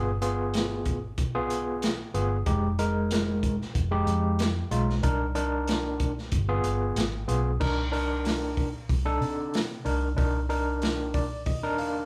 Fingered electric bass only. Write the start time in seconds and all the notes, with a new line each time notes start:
Already playing: G1
1.18 B1
2.14 G1
2.47 F1
3.75 F1
4.07 F2
4.71 B1
5.04 C2
6.32 G1
6.64 G1
6.96 G#1
7.28 B1
7.61 C2
8.89 C2
9.21 C3
9.85 C2
10.18 C2
11.46 D#2